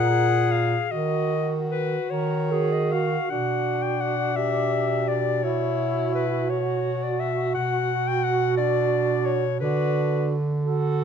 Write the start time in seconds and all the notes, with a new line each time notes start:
Already playing: A#2 A#4 F#5
0.09 G#4
0.51 F5
0.91 D#3 F#4 D#5
1.31 F#4
1.71 B4
2.10 D#3 A#4 C#5
2.51 F#4 G#4
2.72 D#5
2.92 F#4 F5
3.29 B2 D4 F#4 F#5
3.82 G5
4.01 F#5
4.36 G4 E5
5.08 D5
5.43 E4 F#4 C#5
6.14 B4
6.50 F#4 C#5
7.03 D5
7.20 E5
7.54 B2 F#4 F#5
8.07 G5
8.24 F#5
8.57 D4 D5
9.25 C#5
9.60 D3 D4 F#4 B4
10.63 F#4 A4